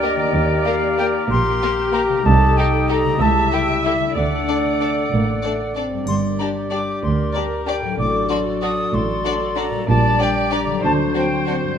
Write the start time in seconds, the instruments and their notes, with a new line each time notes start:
Already playing: cello section D2, double bass section D2, harp G2 A#3 D4 G4, french horn section A#3 G4, clarinet D4, cor anglais A#4, viola section D5
0.02 violin section A#3 G4 A#4, flute D#5
0.16 harp D#3
0.21 harp A#3
0.25 harp D#4
0.29 harp G4
0.34 cello section D#2, double bass section D#2, clarinet G4
0.65 violin section A#3 G4 A#4, flute F5
0.98 violin section A#3 G4 A#4, flute G5
1.30 double bass section A#1, cello section A#2, viola section G4, flute C6
1.62 violin section A#3 G4 A#4
1.93 violin section A#3 G4 A#4, flute A#5
2.08 harp C3
2.12 harp A3
2.17 harp D#4
2.22 double bass section C2, cello section C2, french horn section G3 D#4, harp G4, viola section A4, cor anglais D#5, flute A5
2.57 violin section D#4 G4 A4, flute G5
2.89 violin section D#4 G4 A4, flute A#5
3.02 harp C#3
3.07 harp A3
3.11 harp E4
3.16 french horn section G3 E4, harp G4
3.20 double bass section C#2, cello section C#2, viola section E5, cor anglais E5, flute A5
3.52 violin section E4 G4 A4, flute G5
3.83 violin section E4 G4 A4, flute E5
3.98 harp D3
4.02 harp A3
4.06 harp D4
4.11 harp A4
4.16 cello section D2, double bass section D2, french horn section A3 D4, clarinet A4, cor anglais D5, viola section D5, flute F#5
4.48 violin section D4 A4 D5
4.80 violin section D4 A4 D5
5.11 double bass section A1, cello section A2, french horn section A#3
5.43 french horn section A3, violin section D4 A4 D5
5.74 french horn section C4, violin section D4 A4 D5
5.89 harp G2
5.94 harp G3
5.99 harp D4
6.03 double bass section G1, clarinet G4, harp A#4, triangle
6.08 cello section G2, flute C6
6.38 french horn section G3 D4, violin section D4 G4 D5, flute A#5
6.70 french horn section G3 D4, violin section D4 G4 D5, flute D6
7.02 double bass section D2, cello section D2, viola section A#4, flute C6
7.33 french horn section G3 D4, violin section D4 G4 D5, flute A#5
7.65 french horn section G3 D4, violin section D4 G4 D5, flute G5
7.80 harp A2
7.85 harp F#3
7.89 harp D4
7.94 double bass section A1, harp D5
7.98 cello section A2, clarinet F#4, viola section A4, cor anglais D5, flute D6
8.29 french horn section F#3 D4, violin section D4 F#4 D5, flute C6
8.61 french horn section F#3 D4, violin section D4 F#4 D5, flute D#6
8.93 double bass section A1, cello section A2, flute C6
9.25 french horn section F#3 D4, violin section D4 F#4 D5
9.56 french horn section F#3 D4, violin section D4 F#4 D5, flute A#5
9.70 harp A#2
9.75 harp G3
9.80 harp D4
9.84 double bass section A#1, cello section A#2, harp D5
9.88 clarinet G4, viola section D5, flute A5
10.20 french horn section G3 D4, violin section D4 G4 D5, flute G5
10.50 french horn section G3 D4, violin section D4 G4 D5, flute A#5
10.65 harp D3
10.70 harp F#3
10.74 harp D4
10.78 harp C5
10.83 double bass section D2, cello section D3, clarinet F#4, viola section C5, cor anglais C5, flute A5
11.14 french horn section F#3 C4, violin section D4 F#4 C5, flute G5
11.46 french horn section F#3 C4, violin section D4 F#4 C5, flute F#5
11.62 harp G2
11.67 harp G3
11.71 harp D4